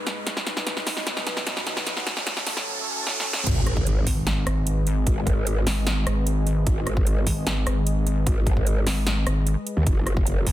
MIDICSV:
0, 0, Header, 1, 7, 480
1, 0, Start_track
1, 0, Tempo, 400000
1, 319, Time_signature, 4, 2, 24, 8
1, 12625, End_track
2, 0, Start_track
2, 0, Title_t, "Analog synth pad"
2, 0, Program_c, 0, 89
2, 0, Note_on_c, 0, 44, 73
2, 0, Note_on_c, 0, 56, 68
2, 0, Note_on_c, 0, 63, 69
2, 0, Note_on_c, 0, 71, 84
2, 281, Note_off_c, 0, 44, 0
2, 281, Note_off_c, 0, 56, 0
2, 281, Note_off_c, 0, 63, 0
2, 318, Note_on_c, 0, 47, 77
2, 319, Note_on_c, 0, 54, 70
2, 319, Note_on_c, 0, 63, 70
2, 2192, Note_off_c, 0, 71, 0
2, 2220, Note_off_c, 0, 47, 0
2, 2220, Note_off_c, 0, 63, 0
2, 2239, Note_on_c, 0, 61, 73
2, 2240, Note_on_c, 0, 45, 79
2, 2240, Note_on_c, 0, 69, 84
2, 4121, Note_off_c, 0, 54, 0
2, 4140, Note_off_c, 0, 45, 0
2, 4140, Note_off_c, 0, 61, 0
2, 4141, Note_off_c, 0, 69, 0
2, 4159, Note_on_c, 0, 56, 77
2, 4159, Note_on_c, 0, 71, 72
2, 4160, Note_on_c, 0, 68, 72
2, 4160, Note_on_c, 0, 75, 83
2, 11791, Note_off_c, 0, 56, 0
2, 11791, Note_off_c, 0, 71, 0
2, 11792, Note_off_c, 0, 68, 0
2, 11792, Note_off_c, 0, 75, 0
2, 11840, Note_on_c, 0, 54, 75
2, 11840, Note_on_c, 0, 66, 72
2, 11840, Note_on_c, 0, 69, 70
2, 11840, Note_on_c, 0, 76, 83
2, 12625, Note_off_c, 0, 54, 0
2, 12625, Note_off_c, 0, 66, 0
2, 12625, Note_off_c, 0, 69, 0
2, 12625, Note_off_c, 0, 76, 0
2, 12625, End_track
3, 0, Start_track
3, 0, Title_t, "Wobble bass"
3, 0, Program_c, 1, 39
3, 4880, Note_on_c, 1, 32, 96
3, 5341, Note_off_c, 1, 32, 0
3, 5360, Note_on_c, 1, 32, 100
3, 6061, Note_off_c, 1, 32, 0
3, 6800, Note_on_c, 1, 32, 97
3, 7261, Note_off_c, 1, 32, 0
3, 7280, Note_on_c, 1, 32, 98
3, 7981, Note_off_c, 1, 32, 0
3, 8720, Note_on_c, 1, 32, 99
3, 9181, Note_off_c, 1, 32, 0
3, 9200, Note_on_c, 1, 32, 100
3, 9901, Note_off_c, 1, 32, 0
3, 10640, Note_on_c, 1, 32, 96
3, 11101, Note_off_c, 1, 32, 0
3, 11119, Note_on_c, 1, 32, 97
3, 11462, Note_off_c, 1, 32, 0
3, 12559, Note_on_c, 1, 30, 97
3, 12625, Note_off_c, 1, 30, 0
3, 12625, End_track
4, 0, Start_track
4, 0, Title_t, "Wobble bass"
4, 0, Program_c, 2, 39
4, 4160, Note_on_c, 2, 32, 98
4, 4861, Note_off_c, 2, 32, 0
4, 6080, Note_on_c, 2, 32, 97
4, 6781, Note_off_c, 2, 32, 0
4, 8000, Note_on_c, 2, 32, 99
4, 8701, Note_off_c, 2, 32, 0
4, 9920, Note_on_c, 2, 32, 96
4, 10621, Note_off_c, 2, 32, 0
4, 11721, Note_on_c, 2, 39, 100
4, 11821, Note_off_c, 2, 39, 0
4, 11839, Note_on_c, 2, 30, 95
4, 12540, Note_off_c, 2, 30, 0
4, 12625, End_track
5, 0, Start_track
5, 0, Title_t, "Impact"
5, 0, Program_c, 3, 103
5, 4160, Note_on_c, 3, 60, 75
5, 6080, Note_off_c, 3, 60, 0
5, 12625, End_track
6, 0, Start_track
6, 0, Title_t, "Riser"
6, 0, Program_c, 4, 103
6, 0, Note_on_c, 4, 60, 75
6, 4160, Note_off_c, 4, 60, 0
6, 12625, End_track
7, 0, Start_track
7, 0, Title_t, "Drums"
7, 79, Note_on_c, 9, 38, 89
7, 79, Note_on_c, 9, 42, 48
7, 199, Note_off_c, 9, 38, 0
7, 199, Note_off_c, 9, 42, 0
7, 319, Note_on_c, 9, 38, 91
7, 319, Note_on_c, 9, 42, 78
7, 439, Note_off_c, 9, 38, 0
7, 439, Note_off_c, 9, 42, 0
7, 441, Note_on_c, 9, 38, 80
7, 560, Note_off_c, 9, 38, 0
7, 560, Note_on_c, 9, 38, 91
7, 560, Note_on_c, 9, 42, 50
7, 680, Note_off_c, 9, 38, 0
7, 680, Note_off_c, 9, 42, 0
7, 681, Note_on_c, 9, 38, 79
7, 800, Note_off_c, 9, 38, 0
7, 800, Note_on_c, 9, 38, 91
7, 800, Note_on_c, 9, 42, 76
7, 920, Note_off_c, 9, 38, 0
7, 920, Note_off_c, 9, 42, 0
7, 921, Note_on_c, 9, 38, 84
7, 1040, Note_off_c, 9, 38, 0
7, 1040, Note_on_c, 9, 38, 95
7, 1040, Note_on_c, 9, 46, 94
7, 1160, Note_off_c, 9, 38, 0
7, 1160, Note_off_c, 9, 46, 0
7, 1162, Note_on_c, 9, 38, 85
7, 1280, Note_off_c, 9, 38, 0
7, 1280, Note_on_c, 9, 38, 94
7, 1280, Note_on_c, 9, 42, 76
7, 1400, Note_off_c, 9, 38, 0
7, 1400, Note_off_c, 9, 42, 0
7, 1402, Note_on_c, 9, 38, 86
7, 1520, Note_off_c, 9, 38, 0
7, 1520, Note_on_c, 9, 38, 98
7, 1520, Note_on_c, 9, 42, 51
7, 1640, Note_off_c, 9, 38, 0
7, 1640, Note_off_c, 9, 42, 0
7, 1642, Note_on_c, 9, 38, 87
7, 1760, Note_off_c, 9, 38, 0
7, 1760, Note_on_c, 9, 38, 97
7, 1760, Note_on_c, 9, 42, 79
7, 1880, Note_off_c, 9, 38, 0
7, 1880, Note_off_c, 9, 42, 0
7, 1881, Note_on_c, 9, 38, 88
7, 2000, Note_off_c, 9, 38, 0
7, 2000, Note_on_c, 9, 38, 96
7, 2000, Note_on_c, 9, 42, 51
7, 2120, Note_off_c, 9, 38, 0
7, 2120, Note_off_c, 9, 42, 0
7, 2121, Note_on_c, 9, 38, 90
7, 2240, Note_off_c, 9, 38, 0
7, 2240, Note_on_c, 9, 38, 101
7, 2240, Note_on_c, 9, 42, 81
7, 2360, Note_off_c, 9, 38, 0
7, 2360, Note_off_c, 9, 42, 0
7, 2361, Note_on_c, 9, 38, 91
7, 2480, Note_off_c, 9, 38, 0
7, 2480, Note_on_c, 9, 38, 98
7, 2480, Note_on_c, 9, 42, 52
7, 2600, Note_off_c, 9, 38, 0
7, 2600, Note_off_c, 9, 42, 0
7, 2601, Note_on_c, 9, 38, 90
7, 2720, Note_off_c, 9, 38, 0
7, 2720, Note_on_c, 9, 38, 103
7, 2720, Note_on_c, 9, 42, 80
7, 2840, Note_off_c, 9, 38, 0
7, 2840, Note_off_c, 9, 42, 0
7, 2841, Note_on_c, 9, 38, 92
7, 2959, Note_off_c, 9, 38, 0
7, 2959, Note_on_c, 9, 38, 104
7, 2959, Note_on_c, 9, 46, 97
7, 3079, Note_off_c, 9, 38, 0
7, 3079, Note_off_c, 9, 46, 0
7, 3081, Note_on_c, 9, 38, 93
7, 3201, Note_off_c, 9, 38, 0
7, 3680, Note_on_c, 9, 38, 69
7, 3800, Note_off_c, 9, 38, 0
7, 3840, Note_on_c, 9, 38, 84
7, 3960, Note_off_c, 9, 38, 0
7, 4000, Note_on_c, 9, 38, 97
7, 4120, Note_off_c, 9, 38, 0
7, 4160, Note_on_c, 9, 36, 118
7, 4160, Note_on_c, 9, 42, 83
7, 4160, Note_on_c, 9, 49, 105
7, 4280, Note_off_c, 9, 36, 0
7, 4280, Note_off_c, 9, 42, 0
7, 4280, Note_off_c, 9, 49, 0
7, 4400, Note_on_c, 9, 37, 61
7, 4400, Note_on_c, 9, 42, 54
7, 4520, Note_off_c, 9, 37, 0
7, 4520, Note_off_c, 9, 42, 0
7, 4522, Note_on_c, 9, 36, 106
7, 4640, Note_on_c, 9, 42, 83
7, 4642, Note_off_c, 9, 36, 0
7, 4760, Note_off_c, 9, 42, 0
7, 4880, Note_on_c, 9, 36, 63
7, 4880, Note_on_c, 9, 46, 95
7, 5000, Note_off_c, 9, 36, 0
7, 5000, Note_off_c, 9, 46, 0
7, 5120, Note_on_c, 9, 38, 119
7, 5120, Note_on_c, 9, 42, 85
7, 5240, Note_off_c, 9, 38, 0
7, 5240, Note_off_c, 9, 42, 0
7, 5360, Note_on_c, 9, 37, 81
7, 5360, Note_on_c, 9, 42, 56
7, 5480, Note_off_c, 9, 37, 0
7, 5480, Note_off_c, 9, 42, 0
7, 5600, Note_on_c, 9, 42, 84
7, 5720, Note_off_c, 9, 42, 0
7, 5840, Note_on_c, 9, 42, 55
7, 5960, Note_off_c, 9, 42, 0
7, 6080, Note_on_c, 9, 36, 120
7, 6080, Note_on_c, 9, 42, 83
7, 6200, Note_off_c, 9, 36, 0
7, 6200, Note_off_c, 9, 42, 0
7, 6320, Note_on_c, 9, 36, 112
7, 6320, Note_on_c, 9, 42, 56
7, 6440, Note_off_c, 9, 36, 0
7, 6440, Note_off_c, 9, 42, 0
7, 6560, Note_on_c, 9, 42, 84
7, 6680, Note_off_c, 9, 42, 0
7, 6800, Note_on_c, 9, 38, 65
7, 6800, Note_on_c, 9, 46, 96
7, 6920, Note_off_c, 9, 38, 0
7, 6920, Note_off_c, 9, 46, 0
7, 7040, Note_on_c, 9, 38, 122
7, 7040, Note_on_c, 9, 42, 84
7, 7160, Note_off_c, 9, 38, 0
7, 7160, Note_off_c, 9, 42, 0
7, 7280, Note_on_c, 9, 37, 79
7, 7280, Note_on_c, 9, 42, 58
7, 7400, Note_off_c, 9, 37, 0
7, 7400, Note_off_c, 9, 42, 0
7, 7519, Note_on_c, 9, 42, 84
7, 7639, Note_off_c, 9, 42, 0
7, 7759, Note_on_c, 9, 42, 57
7, 7879, Note_off_c, 9, 42, 0
7, 8000, Note_on_c, 9, 36, 125
7, 8000, Note_on_c, 9, 42, 80
7, 8120, Note_off_c, 9, 36, 0
7, 8120, Note_off_c, 9, 42, 0
7, 8240, Note_on_c, 9, 37, 60
7, 8240, Note_on_c, 9, 42, 54
7, 8360, Note_off_c, 9, 37, 0
7, 8360, Note_off_c, 9, 42, 0
7, 8362, Note_on_c, 9, 36, 111
7, 8480, Note_on_c, 9, 42, 81
7, 8482, Note_off_c, 9, 36, 0
7, 8600, Note_off_c, 9, 42, 0
7, 8720, Note_on_c, 9, 36, 68
7, 8720, Note_on_c, 9, 46, 94
7, 8840, Note_off_c, 9, 36, 0
7, 8840, Note_off_c, 9, 46, 0
7, 8960, Note_on_c, 9, 38, 124
7, 8960, Note_on_c, 9, 42, 82
7, 9080, Note_off_c, 9, 38, 0
7, 9080, Note_off_c, 9, 42, 0
7, 9200, Note_on_c, 9, 37, 77
7, 9200, Note_on_c, 9, 42, 56
7, 9320, Note_off_c, 9, 37, 0
7, 9320, Note_off_c, 9, 42, 0
7, 9439, Note_on_c, 9, 42, 83
7, 9559, Note_off_c, 9, 42, 0
7, 9680, Note_on_c, 9, 42, 55
7, 9800, Note_off_c, 9, 42, 0
7, 9920, Note_on_c, 9, 36, 122
7, 9920, Note_on_c, 9, 42, 76
7, 10040, Note_off_c, 9, 36, 0
7, 10040, Note_off_c, 9, 42, 0
7, 10159, Note_on_c, 9, 42, 53
7, 10160, Note_on_c, 9, 36, 109
7, 10279, Note_off_c, 9, 42, 0
7, 10280, Note_off_c, 9, 36, 0
7, 10281, Note_on_c, 9, 36, 65
7, 10400, Note_on_c, 9, 42, 77
7, 10401, Note_off_c, 9, 36, 0
7, 10520, Note_off_c, 9, 42, 0
7, 10639, Note_on_c, 9, 38, 65
7, 10639, Note_on_c, 9, 46, 90
7, 10759, Note_off_c, 9, 38, 0
7, 10759, Note_off_c, 9, 46, 0
7, 10879, Note_on_c, 9, 38, 127
7, 10879, Note_on_c, 9, 42, 79
7, 10999, Note_off_c, 9, 38, 0
7, 10999, Note_off_c, 9, 42, 0
7, 11119, Note_on_c, 9, 37, 79
7, 11119, Note_on_c, 9, 42, 54
7, 11239, Note_off_c, 9, 37, 0
7, 11239, Note_off_c, 9, 42, 0
7, 11359, Note_on_c, 9, 42, 81
7, 11479, Note_off_c, 9, 42, 0
7, 11599, Note_on_c, 9, 42, 54
7, 11719, Note_off_c, 9, 42, 0
7, 11839, Note_on_c, 9, 36, 119
7, 11839, Note_on_c, 9, 42, 76
7, 11959, Note_off_c, 9, 36, 0
7, 11959, Note_off_c, 9, 42, 0
7, 12079, Note_on_c, 9, 37, 61
7, 12079, Note_on_c, 9, 42, 51
7, 12199, Note_off_c, 9, 37, 0
7, 12199, Note_off_c, 9, 42, 0
7, 12201, Note_on_c, 9, 36, 108
7, 12319, Note_on_c, 9, 42, 78
7, 12321, Note_off_c, 9, 36, 0
7, 12439, Note_off_c, 9, 42, 0
7, 12559, Note_on_c, 9, 36, 63
7, 12559, Note_on_c, 9, 46, 92
7, 12625, Note_off_c, 9, 36, 0
7, 12625, Note_off_c, 9, 46, 0
7, 12625, End_track
0, 0, End_of_file